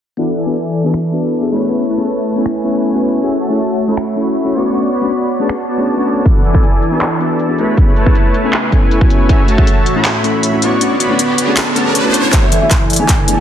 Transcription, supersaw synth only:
0.18 0.35 E3 medium
0.18 0.35 E4 medium
0.18 0.35 A4 medium
0.18 0.35 D5 medium
0.18 0.35 F#5 medium
0.37 0.82 E3 loud
0.37 0.82 E4 medium
0.37 0.82 A4 medium
0.37 0.82 D5 medium
0.37 0.82 G#5 loud
0.85 1.49 E3 medium
0.85 1.49 E4 medium
0.85 1.49 A4 medium
0.85 1.49 D5 medium
0.85 1.49 A5 medium
1.51 1.87 A3 medium
1.51 1.87 E4 medium
1.51 1.87 B4 medium
1.51 1.87 C#5 medium
1.51 1.87 B5 medium
1.89 2.34 A3 medium
1.89 2.34 E4 medium
1.89 2.34 B4 medium
1.89 2.34 C#5 medium
1.89 2.34 A5 medium
2.36 2.62 A3 medium
2.36 2.62 E4 medium
2.36 2.62 B4 medium
2.36 2.62 C#5 medium
2.36 2.62 G#5 medium
2.64 2.91 A3 medium
2.64 2.91 E4 medium
2.64 2.91 B4 medium
2.64 2.91 C#5 medium
2.64 2.91 G#5 loud
2.94 3.20 A3 medium
2.94 3.20 E4 medium
2.94 3.20 B4 medium
2.94 3.20 C#5 medium
2.94 3.19 G#5 loud
3.21 3.38 A3 medium
3.21 3.38 F#4 medium
3.21 3.38 C#5 medium
3.21 3.38 E5 medium
3.21 3.38 G#5 loud
3.40 3.86 A3 loud
3.40 3.86 F#4 medium
3.40 3.86 C#5 medium
3.40 3.86 E5 medium
3.40 3.86 A5 loud
3.88 4.52 A3 medium
3.88 4.52 F#4 medium
3.88 4.52 C#5 medium
3.88 4.52 E5 medium
3.88 4.52 B5 medium
4.54 4.90 B3 medium
4.54 4.90 F#4 medium
4.54 4.90 C#5 medium
4.54 4.90 D5 medium
4.54 4.90 C#6 medium
4.92 5.38 B3 medium
4.92 5.38 F#4 medium
4.92 5.38 C#5 medium
4.92 5.38 D5 medium
4.92 5.38 B5 medium
5.40 5.66 B3 medium
5.40 5.66 F#4 medium
5.40 5.66 C#5 medium
5.40 5.66 D5 medium
5.40 5.66 A5 medium
5.68 5.95 B3 medium
5.68 5.95 F#4 medium
5.68 5.95 C#5 medium
5.68 5.95 D5 medium
5.68 5.95 A5 loud
5.97 6.23 B3 medium
5.97 6.23 F#4 medium
5.97 6.23 C#5 medium
5.97 6.23 D5 medium
5.97 6.23 A5 loud
6.25 6.42 E3 medium
6.25 6.42 E4 medium
6.25 6.42 A4 medium
6.25 6.42 D5 medium
6.25 6.42 F#5 medium
6.44 6.90 E3 medium
6.44 6.90 E4 medium
6.44 6.90 A4 medium
6.44 6.90 D5 medium
6.44 6.90 G#5 loud
6.92 7.56 E3 medium
6.92 7.56 E4 medium
6.92 7.56 A4 medium
6.92 7.56 D5 medium
6.92 7.56 A5 medium
7.58 7.94 A3 medium
7.58 7.94 E4 medium
7.58 7.94 B4 medium
7.58 7.94 C#5 medium
7.58 7.94 B5 medium
7.96 8.42 A3 medium
7.96 8.42 E4 medium
7.96 8.42 B4 medium
7.96 8.42 C#5 medium
7.96 8.42 A5 medium
8.44 8.70 A3 medium
8.44 8.70 E4 medium
8.44 8.70 B4 medium
8.44 8.70 C#5 medium
8.44 8.70 G#5 medium
8.72 8.99 A3 medium
8.72 8.99 E4 medium
8.72 8.99 B4 medium
8.72 8.99 C#5 medium
8.72 8.99 G#5 loud
9.01 9.27 A3 medium
9.01 9.27 E4 medium
9.01 9.27 B4 medium
9.01 9.27 C#5 medium
9.01 9.27 G#5 loud
9.29 9.46 A3 medium
9.29 9.46 F#4 medium
9.29 9.46 C#5 medium
9.29 9.46 E5 medium
9.29 9.46 G#5 medium
9.48 9.94 A3 loud
9.48 9.94 F#4 medium
9.48 9.94 C#5 medium
9.48 9.94 E5 medium
9.48 9.94 A5 loud
9.96 10.60 A3 medium
9.96 10.60 F#4 medium
9.96 10.60 C#5 medium
9.96 10.60 E5 medium
9.96 10.60 B5 medium
10.62 10.98 B3 medium
10.62 10.98 F#4 medium
10.62 10.98 C#5 medium
10.62 10.98 D5 medium
10.62 10.98 C#6 medium
11.00 11.46 B3 medium
11.00 11.46 F#4 medium
11.00 11.46 C#5 medium
11.00 11.46 D5 medium
11.00 11.46 B5 medium
11.48 11.74 B3 medium
11.48 11.74 F#4 medium
11.48 11.74 C#5 medium
11.48 11.74 D5 medium
11.48 11.74 A5 medium
11.76 12.03 B3 medium
11.76 12.03 F#4 medium
11.76 12.03 C#5 medium
11.76 12.03 D5 medium
11.76 12.03 A5 loud
12.05 12.31 B3 medium
12.05 12.31 F#4 medium
12.05 12.31 C#5 medium
12.05 12.31 D5 medium
12.05 12.31 A5 loud
12.33 12.50 E3 medium
12.33 12.50 E4 medium
12.33 12.50 A4 medium
12.33 12.50 D5 medium
12.33 12.50 F#5 loud
12.52 12.98 E3 medium
12.52 12.98 E4 medium
12.52 12.98 A4 medium
12.52 12.98 D5 medium
12.52 12.98 G#5 loud
13.00 13.40 E3 medium
13.00 13.40 E4 medium
13.00 13.40 A4 medium
13.00 13.40 D5 medium
13.00 13.40 A5 medium

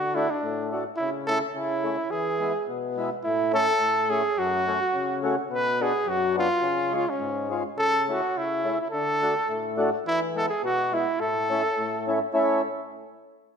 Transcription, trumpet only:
0.00 0.16 F#4 loud
0.15 0.32 E4 medium
0.30 0.72 D4 medium
0.96 1.10 E4 medium
1.27 1.39 A4 loud
1.55 2.12 E4 medium
2.10 2.67 G#4 medium
3.23 3.51 E4 medium
3.53 4.11 A4 loud
4.09 4.40 G#4 medium
4.38 5.24 F#4 loud
5.53 5.83 B4 loud
5.82 6.10 G#4 medium
6.09 6.38 F#4 loud
6.39 6.91 F4 loud
6.95 7.11 F4 medium
7.09 7.52 C#4 medium
7.78 8.06 A4 loud
8.11 8.39 F#4 medium
8.37 8.79 E4 medium
8.81 8.90 E4 medium
8.90 9.73 A4 loud
10.06 10.20 E4 loud
10.37 10.48 A4 loud
10.49 10.61 G#4 medium
10.65 10.95 F#4 loud
10.94 11.22 E4 medium
11.20 12.07 A4 loud
12.31 12.60 A4 medium

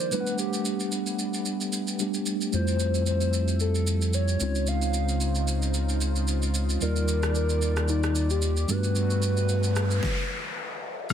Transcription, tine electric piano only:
0.00 0.14 F3 medium
0.00 0.13 A#3 medium
0.00 0.13 D4 medium
0.00 0.14 D#4 medium
0.00 0.13 G4 medium
0.11 1.95 G3 medium
0.11 1.96 A3 medium
0.11 1.96 B3 medium
0.11 1.96 D4 medium
0.11 0.20 E4 medium
0.20 2.00 F#5 medium
2.00 2.51 G3 medium
2.00 2.52 A3 soft
2.00 2.53 B3 medium
2.00 2.54 D4 medium
2.00 2.54 G4 medium
2.52 4.36 G3 medium
2.52 4.37 A3 medium
2.52 4.37 C4 medium
2.52 4.37 E4 medium
2.52 4.38 F4 medium
4.40 6.50 G#3 medium
4.40 6.51 C4 medium
4.40 6.51 C#4 medium
4.40 6.52 D#4 medium
4.40 6.52 F4 medium
6.81 8.65 G3 medium
6.81 8.65 A#3 medium
6.81 8.66 D#4 medium
6.81 8.66 F4 medium
6.81 8.66 D5 medium
8.68 10.00 G3 medium
8.68 10.00 A3 medium
8.68 10.01 B3 medium
8.68 10.01 D4 medium
8.68 10.01 F#4 medium
11.10 11.13 F3 medium

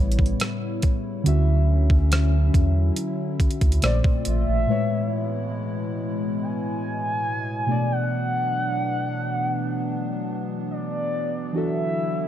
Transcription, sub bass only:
0.00 0.34 A1 medium
1.26 2.51 D2 loud
2.54 2.91 E2 medium
3.40 3.48 D2 soft
3.62 3.80 D2 loud
3.84 4.02 A#1 loud
4.27 4.45 A1 medium
4.48 4.66 A1 medium

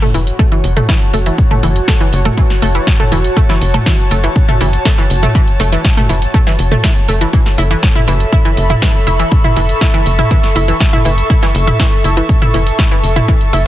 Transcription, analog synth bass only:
0.14 0.32 F#1 medium
0.64 0.81 F#1 loud
1.14 1.31 F#1 medium
1.63 1.80 F#1 loud
2.13 2.30 F#1 loud
2.62 2.80 F#1 loud
3.12 3.29 F#1 medium
3.61 3.79 F#1 loud
4.11 4.28 F#1 loud
4.61 4.78 F#1 loud
5.10 5.27 F#1 medium
5.60 5.77 F#1 loud
6.09 6.27 F#1 loud
6.59 6.76 F#1 loud
7.09 7.26 F#1 medium
7.58 7.75 F#1 loud
8.08 8.25 F#1 loud
8.57 8.75 F#1 loud
9.07 9.24 F#1 medium
9.56 9.74 F#1 loud
10.06 10.23 F#1 loud
10.56 10.73 F#1 loud
11.05 11.22 F#1 medium
11.55 11.72 F#1 loud
12.04 12.22 F#1 loud
12.54 12.71 F#1 loud
13.04 13.21 F#1 medium
13.53 13.67 F#1 loud

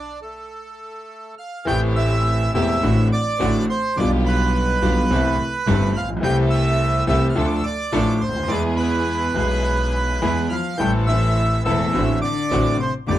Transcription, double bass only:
1.67 2.50 A1 loud
2.54 2.78 E1 medium
2.82 3.07 A1 loud
3.40 3.64 A1 loud
3.98 4.78 B1 loud
4.82 5.06 B1 loud
5.10 5.34 C2 loud
5.67 5.91 G1 loud
5.95 6.23 A#1 medium
6.23 7.04 C2 loud
7.08 7.32 C2 loud
7.36 7.60 D2 loud
7.93 8.17 A1 loud
8.22 8.49 D2 medium
8.50 9.31 E2 loud
9.36 10.18 B1 loud
10.22 10.46 E2 medium
10.79 11.61 A1 loud
11.66 11.90 E1 loud
11.94 12.18 A1 loud
12.52 12.76 A1 loud
13.08 13.19 G1 loud

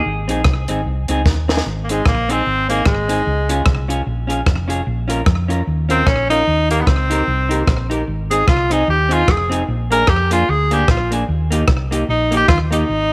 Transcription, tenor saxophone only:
1.84 1.92 A#3 medium
1.90 2.06 G#3 medium
2.08 2.33 A#3 loud
2.31 2.69 C4 loud
2.70 2.88 A#3 medium
2.86 3.90 G#3 medium
5.91 6.08 C4 loud
6.07 6.29 C#4 loud
6.30 6.67 D#4 loud
6.71 6.82 A#3 medium
6.81 6.88 B3 medium
6.87 7.91 C4 medium
8.31 8.46 G#4 loud
8.48 8.73 F4 loud
8.72 8.88 D#4 loud
8.90 9.15 G4 medium
9.13 9.32 F4 loud
9.31 9.53 G#4 medium
9.92 10.11 A#4 loud
10.09 10.32 G4 loud
10.33 10.52 F4 loud
10.50 10.74 G#4 loud
10.73 10.89 G4 medium
10.90 11.11 F4 medium
12.10 12.34 D#4 medium
12.37 12.48 G4 loud
12.48 12.59 F4 loud
12.73 13.13 D#4 loud

